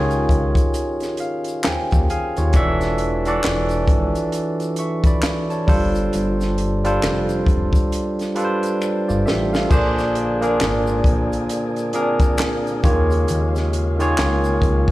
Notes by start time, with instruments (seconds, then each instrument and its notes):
Already playing: analog synth bass C#2, tine electric piano D#3 C#4 F4 G4 G#4 C#5 D#5
0.11 closed hi-hat, shaker
0.29 analog synth bass C#2, kick, closed hi-hat
0.55 kick, closed hi-hat, shaker
0.74 closed hi-hat, shaker
1.00 snare, closed hi-hat, shaker
1.17 tine electric piano F5, closed hi-hat, shaker
1.44 closed hi-hat, shaker
1.64 analog synth bass D#2, tine electric piano C5 G5 G#5, finger snap, snare, clap, closed hi-hat, shaker
1.91 analog synth bass D#2, kick, closed hi-hat, shaker
2.10 tine electric piano G#4 F5 G#5, closed hi-hat, shaker
2.37 analog synth bass D#2, tine electric piano F4 C#5, closed hi-hat, shaker
2.53 analog synth bass E1, tine electric piano E3 D4 F#4 A4 E5, kick, closed hi-hat, shaker
2.81 snare, closed hi-hat, shaker
2.98 closed hi-hat
3.25 tine electric piano E3 D4 F#4 A4 D5, closed hi-hat, shaker
3.44 analog synth bass E1, finger snap, snare, clap, closed hi-hat, shaker
3.69 closed hi-hat, shaker
3.88 analog synth bass G#1, kick, closed hi-hat
4.15 closed hi-hat, shaker
4.32 closed hi-hat, shaker
4.60 closed hi-hat, shaker
4.76 tine electric piano E5 C#6, closed hi-hat, shaker
5.04 tine electric piano D5 B5, kick, closed hi-hat, shaker
5.23 finger snap, snare, clap, closed hi-hat, shaker
5.50 tine electric piano C#5 A5, closed hi-hat, shaker
5.67 analog synth bass G1, tine electric piano G3 D4 F4 A4 C5, kick, open hi-hat, shaker
5.95 closed hi-hat, shaker
6.13 analog synth bass G1, closed hi-hat, shaker
6.41 snare, closed hi-hat, shaker
6.58 closed hi-hat
6.84 tine electric piano G3 D4 F4 A4 C5, closed hi-hat, shaker
7.03 analog synth bass F1, finger snap, snare, clap, closed hi-hat, shaker
7.29 closed hi-hat, shaker
7.46 analog synth bass F1, kick, closed hi-hat
7.73 kick, closed hi-hat, shaker
7.92 closed hi-hat, shaker
8.19 snare, closed hi-hat, shaker
8.35 tine electric piano G3 D4 F4 A4 B4, closed hi-hat, shaker
8.45 tine electric piano C5
8.63 closed hi-hat, shaker
8.82 finger snap, shaker
9.08 analog synth bass G1, tine electric piano F4 D5, shaker
9.26 analog synth bass A1, tine electric piano G4 E5, snare, shaker
9.53 tine electric piano A4 F5, snare, shaker
9.69 analog synth bass A#1, tine electric piano A#2 A#3 D4 G#4 C5, tonewheel organ D3 A#3 G#4, kick, crash, shaker
9.98 snare, closed hi-hat, shaker
10.15 closed hi-hat
10.41 tine electric piano A#2 A#3 D4 G#4 A#4, closed hi-hat, shaker
10.60 analog synth bass G#1, finger snap, snare, clap, closed hi-hat, shaker
10.87 shaker
11.04 analog synth bass A#1, kick, closed hi-hat
11.32 closed hi-hat, shaker
11.49 closed hi-hat, shaker
11.76 closed hi-hat, shaker
11.93 tine electric piano A#2 A#3 C4 G#4 A#4, closed hi-hat, shaker
12.01 tine electric piano D4
12.20 kick, closed hi-hat, shaker
12.38 finger snap, snare, clap, closed hi-hat, shaker
12.67 closed hi-hat, shaker
12.83 analog synth bass D#2, tonewheel organ C#3 G#3 F4, tine electric piano D#3 A#3 F4 G4 C#5, kick, closed hi-hat, shaker
12.91 tine electric piano G#4
13.10 closed hi-hat, shaker
13.28 analog synth bass D#2, closed hi-hat, shaker
13.56 snare, closed hi-hat, shaker
13.73 closed hi-hat
13.99 tine electric piano D#3 A#3 F4 G#4 C#5, closed hi-hat, shaker
14.18 analog synth bass C#2, finger snap, snare, clap, closed hi-hat, shaker
14.44 closed hi-hat, shaker
14.62 analog synth bass C#2, kick, closed hi-hat
14.88 kick